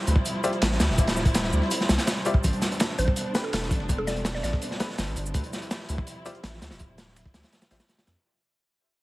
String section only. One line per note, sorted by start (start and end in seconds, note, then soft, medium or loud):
0.00 2.41 F3 medium
0.00 5.31 G3 medium
0.00 5.31 C4 medium
0.00 2.41 E4 medium
2.44 5.32 B3 medium
2.44 5.32 D4 medium
5.35 8.23 F3 medium
5.35 8.23 G3 medium
5.35 8.23 C4 medium
5.35 8.23 E4 medium